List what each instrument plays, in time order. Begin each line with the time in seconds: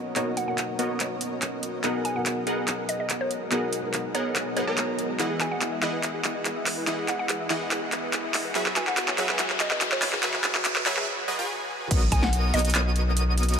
Already playing: felt piano B2 A#3 D#4 A#4 C#5, ambient pad F#3 C#4 A#4 D#5, supersaw synth B3 F#4 A#4 C#5 D#5
0.15 felt piano B2 A#3 D#4 C#5, supersaw synth B3 F#4 A#4 C#5 D#5, clap, closed hi-hat
0.37 synth pluck F#5, closed hi-hat
0.46 felt piano B2 D#4 A#4, synth pluck F#5
0.50 felt piano C#5
0.58 clap, closed hi-hat
0.79 supersaw synth B3 F#4 A#4 C#5 D#5, closed hi-hat
1.00 clap, closed hi-hat
1.21 closed hi-hat
1.42 clap, closed hi-hat
1.63 closed hi-hat
1.83 felt piano B2 F#3 D#4 A#4, ambient pad B2 G#3 B3 F#4, supersaw synth B3 G#4 A#4 D#5 F#5, clap, closed hi-hat
2.05 synth pluck G#5, closed hi-hat
2.14 felt piano B2 F#3 D#4 A#4, synth pluck F#5
2.26 clap, closed hi-hat
2.47 supersaw synth B3 G#4 A#4 D#5 F#5, closed hi-hat
2.68 clap, closed hi-hat
2.89 synth pluck D#5, closed hi-hat
3.00 synth pluck D#5
3.10 clap, closed hi-hat
3.21 synth pluck C#5
3.31 closed hi-hat
3.51 felt piano B2 F#3 D#4 A#4, supersaw synth B3 G#4 A#4 D#5 F#5, clap, closed hi-hat
3.73 closed hi-hat
3.82 felt piano B2 F#3 D#4 A#4
3.94 clap, closed hi-hat
4.15 supersaw synth B3 G#4 A#4 D#5 F#5, synth pluck C#5, closed hi-hat
4.36 clap, closed hi-hat
4.56 felt piano B2 F#3 D#4 A#4, supersaw synth B3 G#4 A#4 D#5 F#5, synth pluck C#5, closed hi-hat
4.67 supersaw synth B3 G#4 A#4 D#5 A#5, synth pluck C#5
4.78 clap, closed hi-hat
4.98 felt piano B2 F#3 D#4 A#4, closed hi-hat
5.19 supersaw synth E3 E4 G#4 D#5 F#5, ambient pad E4 B4, synth arpeggio sound G#4, clap, closed hi-hat, riser
5.30 synth arpeggio sound G#4
5.40 synth arpeggio sound G#4, synth pluck G#5, clap, closed hi-hat
5.51 synth arpeggio sound D#5, synth pluck F#5
5.62 synth arpeggio sound G#4, clap, closed hi-hat
5.72 synth arpeggio sound E5
5.82 supersaw synth E3 E4 G#4 D#5 F#5, synth pluck D#5, synth arpeggio sound E5, clap, closed hi-hat
5.93 synth arpeggio sound B4
6.03 synth arpeggio sound G#4, clap, closed hi-hat
6.14 synth arpeggio sound G#4
6.24 synth arpeggio sound G#4, clap, closed hi-hat
6.35 synth arpeggio sound D#5
6.45 synth arpeggio sound G#4, clap, closed hi-hat
6.56 synth arpeggio sound E5
6.66 synth arpeggio sound E5, clap, open hi-hat
6.77 synth arpeggio sound B4
6.87 supersaw synth E3 E4 G#4 D#5 F#5, synth arpeggio sound G#4, clap, closed hi-hat
6.98 synth arpeggio sound G#4
7.08 synth arpeggio sound G#4, synth pluck F#5, clap, closed hi-hat
7.19 synth arpeggio sound D#5, synth pluck F#5
7.29 synth arpeggio sound G#4, clap, closed hi-hat
7.40 synth arpeggio sound E5
7.50 supersaw synth E3 E4 G#4 D#5 F#5, synth arpeggio sound E5, clap, closed hi-hat
7.61 synth arpeggio sound B4
7.71 synth arpeggio sound G#4, clap, closed hi-hat
7.82 synth arpeggio sound G#4
7.92 synth arpeggio sound G#4, clap, closed hi-hat
8.03 synth arpeggio sound D#5
8.13 synth arpeggio sound G#4, clap, closed hi-hat
8.24 synth arpeggio sound E5
8.34 synth arpeggio sound E5, clap, open hi-hat
8.45 synth arpeggio sound B4
8.55 supersaw synth F#3 F#4 G#4 B4 E5, ambient pad C#4 E4 F#4 B4, synth arpeggio sound F#4, clap, closed hi-hat
8.66 synth arpeggio sound F#4, clap
8.76 synth arpeggio sound F#4, synth pluck G#5, clap, closed hi-hat
8.87 synth arpeggio sound B4, synth pluck F#5, clap
8.97 synth arpeggio sound F#4, clap, closed hi-hat
9.08 synth arpeggio sound C#5, clap
9.18 supersaw synth F#3 F#4 G#4 B4 E5, synth arpeggio sound C#5, clap, closed hi-hat
9.29 synth arpeggio sound G#4, clap
9.39 synth arpeggio sound F#4, clap, closed hi-hat
9.50 synth arpeggio sound F#4, clap
9.60 synth arpeggio sound F#4, synth pluck D#5, clap, closed hi-hat
9.71 synth arpeggio sound B4, synth pluck D#5, clap
9.81 synth arpeggio sound F#4, clap, closed hi-hat
9.92 synth arpeggio sound C#5, synth pluck C#5, clap
10.02 synth arpeggio sound C#5, clap, open hi-hat
10.13 synth arpeggio sound G#4, clap
10.23 supersaw synth F#3 F#4 G#4 B4 E5, synth arpeggio sound F#4, clap, closed hi-hat
10.34 synth arpeggio sound F#4, clap
10.44 synth arpeggio sound F#4, clap, closed hi-hat
10.55 synth arpeggio sound B4, clap
10.65 synth arpeggio sound F#4, clap, closed hi-hat
10.76 synth arpeggio sound C#5, clap
10.86 supersaw synth F#3 F#4 G#4 B4 E5, synth arpeggio sound C#5, synth pluck C#5, clap, closed hi-hat
10.97 synth arpeggio sound G#4, clap
11.28 supersaw synth F#3 F#4 G#4 B4 D#5
11.39 supersaw synth F#3 F#4 G#4 B4 G#5
11.91 sub bass B1, ambient pad D#3 B3 C#4 F#4 A#4, supersaw synth B3 F#4 A#4 C#5 D#5, digital synth lead D#6, kick, closed hi-hat, crash
12.12 synth pluck G#5, kick, closed hi-hat
12.23 synth pluck F#5, snare
12.33 closed hi-hat
12.54 sub bass B1, supersaw synth B3 F#4 A#4 C#5 D#5, synth pluck D#5, digital synth lead D#6, closed hi-hat
12.59 closed hi-hat
12.65 closed hi-hat
12.70 closed hi-hat
12.75 clap, closed hi-hat
12.96 closed hi-hat
13.17 closed hi-hat
13.38 closed hi-hat
13.43 closed hi-hat
13.49 closed hi-hat
13.54 closed hi-hat